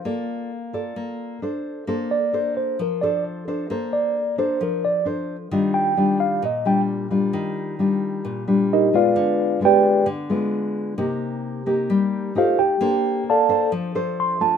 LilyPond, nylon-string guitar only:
\new Staff \with { instrumentName = "Nylon-string guitar" } { \time 4/4 \key bes \major \tempo 4 = 132 << { <f' a' d''>4 r8 <f' a' d''>4. <d' a' c''>4 | <d' a' c''>8 r8 <d' a' c''>4 r8 <d' a' c''>4 <d' a' c''>8 | <d' a' c''>4 r8 <d' a' c''>4. <d' a' c''>8 r8 | <g d' f'>4 <g d' f'>4 r8 <g d' f'>4 <g d' f'>8~ |
<g d' f'>4 <g d' f'>4. <g d' f'>4 <aes ces' f'>8~ | <aes ces' f'>4 <aes b f'>4 r8 <aes b f'>4. | <bes ees' g'>4. <bes ees' g'>4. <a ees' g'>4 | <d' a' c''>4. <d' a' c''>4 <d' a' c''>4 <a d' f'>8 | } \\ { bes2 bes4 r4 | bes2 f2 | bes2 f2 | ees2 bes,2 |
ees2 bes,2 | d2 d2 | c2 g4 r4 | bes2 f2 | } >> }